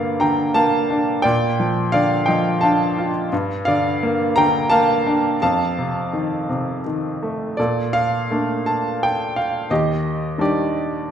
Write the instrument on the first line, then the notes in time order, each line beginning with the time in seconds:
grand piano
Already playing: G2 D3 A#3 D5 F5
0.20 D3 G5 A#5
0.54 A#3 F5 A5
0.90 D4
1.22 A#2 D5 G5
1.60 F3
1.92 D3 D5 F5
2.26 F3 D#5 G5
2.61 D4 F5 A5
2.98 F4
3.33 G2
3.65 D3 D5 F5
4.03 A#3
4.36 D3 G5 A#5
4.70 A#3 F5 A5
5.07 D4
5.42 F2 F5 A5
5.78 C3
6.13 D#3
6.49 C3
6.86 D#3
7.23 A3
7.57 A#2 A4 D5
7.93 F5
8.31 A3 A#3 D4
8.66 A5
9.03 G5
9.36 F5
9.71 D#2 G4 D#5
10.38 D#3 G3 D4 G4 D5